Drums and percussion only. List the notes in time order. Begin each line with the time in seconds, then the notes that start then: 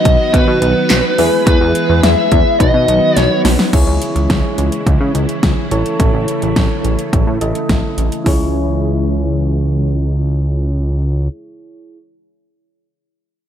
0.05 kick, closed hi-hat
0.34 kick, closed hi-hat
0.62 closed hi-hat
0.90 snare, clap, closed hi-hat
1.18 open hi-hat
1.47 kick, closed hi-hat
1.75 closed hi-hat
2.03 snare, closed hi-hat
2.32 kick, closed hi-hat
2.60 kick, closed hi-hat
2.88 closed hi-hat
3.17 snare, closed hi-hat
3.45 snare, open hi-hat
3.59 snare
3.73 kick, closed hi-hat, crash
4.02 closed hi-hat
4.16 closed hi-hat
4.30 kick, snare, closed hi-hat
4.58 closed hi-hat
4.72 closed hi-hat
4.87 kick, closed hi-hat
5.15 closed hi-hat
5.29 closed hi-hat
5.43 kick, snare, closed hi-hat
5.71 closed hi-hat
5.86 closed hi-hat
6.00 kick, closed hi-hat
6.28 closed hi-hat
6.42 closed hi-hat
6.56 kick, snare, closed hi-hat
6.85 closed hi-hat
6.99 closed hi-hat
7.13 kick, closed hi-hat
7.41 closed hi-hat
7.55 closed hi-hat
7.69 kick, snare, closed hi-hat
7.98 closed hi-hat
8.12 closed hi-hat
8.26 kick, open hi-hat